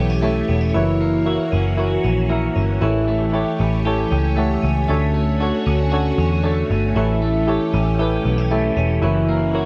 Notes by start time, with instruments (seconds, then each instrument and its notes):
Already playing: picked electric bass B1, string machine E3 A3 G4 C#5, clean electric guitar E3 A3 G4, reed electric piano E4 G4 A4 C#5
0.10 clean electric guitar C#4
0.22 clean electric guitar A3, reed electric piano E4 G4 A4 C#5
0.48 picked electric bass E1, clean electric guitar B3
0.61 clean electric guitar C#4
0.74 picked electric bass F#1, clean electric guitar E3, string machine E3 A#3 F#4, reed electric piano E4 F#4 A#4 C#5
1.01 clean electric guitar A#3
1.26 reed electric piano E4 F#4 A#4 E5, clean electric guitar F#4
1.52 picked electric bass F#1, clean electric guitar C#4
1.77 reed electric piano E4 F#4 A#4 C#5, clean electric guitar F#4
2.04 picked electric bass A#1, clean electric guitar C#4
2.29 clean electric guitar A#3, reed electric piano E4 F#4 A#4 E5
2.56 picked electric bass G1, clean electric guitar C#4
2.81 picked electric bass A1, clean electric guitar E3, string machine A3 G4 C#5, reed electric piano E4 G4 A4 C#5
3.08 clean electric guitar A3
3.33 reed electric piano E4 G4 A4 C#5, clean electric guitar G4
3.59 picked electric bass A1, clean electric guitar C#4, reed electric piano B5
3.85 reed electric piano E4 G4 A4 C#5 A5, clean electric guitar G4
4.11 picked electric bass C#2, clean electric guitar C#4, reed electric piano G5
4.36 clean electric guitar A3, reed electric piano E4 G4 A4 C#5 F#5
4.62 picked electric bass C#2, clean electric guitar C#4, reed electric piano E5
4.88 picked electric bass D2, string machine D3 A3 F#4, clean electric guitar A3, reed electric piano D4 F#4 A4 C#5
5.14 clean electric guitar A3
5.40 reed electric piano D4 F#4 A4 C#5, clean electric guitar F#4
5.66 picked electric bass D2, clean electric guitar C#4
5.92 reed electric piano D4 F#4 A4 C#5, clean electric guitar F#4
6.18 picked electric bass E2, clean electric guitar C#4
6.44 clean electric guitar A3, reed electric piano D4 F#4 A4 C#5
6.70 picked electric bass G1, clean electric guitar C#4
6.95 picked electric bass A1, string machine E3 C#4 G4, clean electric guitar E3, reed electric piano E4 G4 A4 C#5
7.22 clean electric guitar A3
7.47 reed electric piano E4 G4 A4 C#5, clean electric guitar G4
7.73 picked electric bass A1, clean electric guitar C#4
7.99 reed electric piano E4 G4 A4 B4, clean electric guitar G4
8.25 picked electric bass B1, clean electric guitar B3
8.38 clean electric guitar C#4
8.51 clean electric guitar A3, reed electric piano E4 G4 A4 C#5
8.77 picked electric bass E1, clean electric guitar C#4
9.02 picked electric bass F#1, clean electric guitar E3, string machine A#3 C#4 F#4, reed electric piano E4 F#4 A#4 C#5
9.29 clean electric guitar A#3
9.53 reed electric piano E4 F#4 A#4 C#5, clean electric guitar F#4